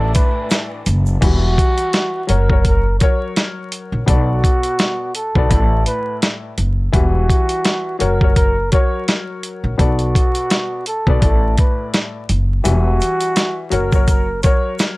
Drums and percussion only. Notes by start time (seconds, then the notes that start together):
0.15 kick, closed hi-hat, shaker
0.50 snare, closed hi-hat, shaker
0.86 closed hi-hat, shaker
1.06 shaker
1.22 kick, closed hi-hat, crash
1.58 kick, closed hi-hat
1.78 closed hi-hat
1.93 snare, closed hi-hat
2.29 closed hi-hat
2.50 kick
2.65 kick, closed hi-hat
3.00 kick, closed hi-hat
3.36 snare, closed hi-hat
3.72 closed hi-hat
4.08 kick, closed hi-hat
4.44 kick, closed hi-hat
4.63 closed hi-hat
4.79 snare, closed hi-hat
5.15 closed hi-hat
5.35 kick
5.51 kick, closed hi-hat
5.86 closed hi-hat
6.22 snare, closed hi-hat
6.58 closed hi-hat
6.93 kick, closed hi-hat
7.29 kick, closed hi-hat
7.49 closed hi-hat
7.65 snare, closed hi-hat
8.00 closed hi-hat
8.21 kick
8.36 kick, closed hi-hat
8.72 kick, closed hi-hat
9.08 snare, closed hi-hat
9.43 closed hi-hat
9.79 kick, closed hi-hat
9.99 closed hi-hat
10.15 kick, closed hi-hat
10.35 closed hi-hat
10.50 snare, closed hi-hat
10.86 closed hi-hat
11.07 kick
11.22 kick, closed hi-hat
11.58 kick, closed hi-hat
11.94 snare, closed hi-hat
12.29 closed hi-hat
12.65 closed hi-hat, shaker
13.00 closed hi-hat, shaker
13.20 closed hi-hat, shaker
13.36 snare, closed hi-hat, shaker
13.72 closed hi-hat, shaker
13.92 kick, shaker
14.08 kick, closed hi-hat, shaker
14.43 kick, closed hi-hat, shaker
14.79 snare, closed hi-hat, shaker